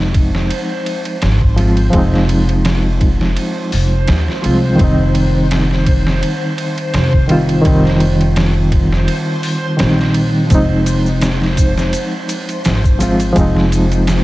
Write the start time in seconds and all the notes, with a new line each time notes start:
Already playing: F1 F3 G#3 C4 D#4 C5
0.14 kick, ride
0.35 snare
0.51 ride
0.86 ride
1.05 ride
1.22 G#1, snare, ride
1.41 kick
1.56 F3 G#3 C4, ride
1.61 F4
1.77 ride
1.90 F1 F3 G#3, kick, ride
1.96 C4 D#4
2.14 snare
2.29 ride
2.49 ride
2.65 snare, ride
3.01 kick, ride
3.21 snare
3.36 ride
3.72 F1, open hi-hat
4.08 D#2, snare, ride
4.28 snare
4.42 C2 F3 G#3 C4 F4, ride
4.76 D#3 G3, kick, ride
4.80 F1 C4
4.84 D#4
5.15 ride
5.51 snare, ride
5.71 snare
5.86 kick, ride
6.07 snare
6.23 ride
6.58 ride
6.78 ride
6.94 F1, snare, ride
7.13 kick
7.27 D#3 G3 C4 F4, ride
7.49 ride
7.61 D#3 G3, kick, ride
7.65 F1 C4 D#4
7.85 snare
8.00 ride
8.21 ride
8.36 snare, ride
8.72 kick, ride
8.92 snare
9.08 ride
9.43 open hi-hat
9.77 A#1 D#3 G3 C4, snare, ride
9.81 D#4
9.99 snare
10.14 ride
10.47 F3 G#3, kick, ride
10.51 F1 C4 D#4, maracas
10.86 ride, maracas
11.06 maracas
11.21 snare, ride, maracas
11.42 snare
11.57 kick, ride, maracas
11.78 snare, maracas
11.93 ride, maracas
12.29 ride, maracas
12.49 ride, maracas
12.64 G#1, snare, ride, maracas
12.84 kick, maracas
12.99 F3 G#3 C4 F4, ride, maracas
13.20 ride, maracas
13.33 F1 F3 G#3, kick, ride
13.37 C4 D#4, maracas
13.57 snare
13.72 ride, maracas
13.92 ride, maracas
14.07 snare, ride, maracas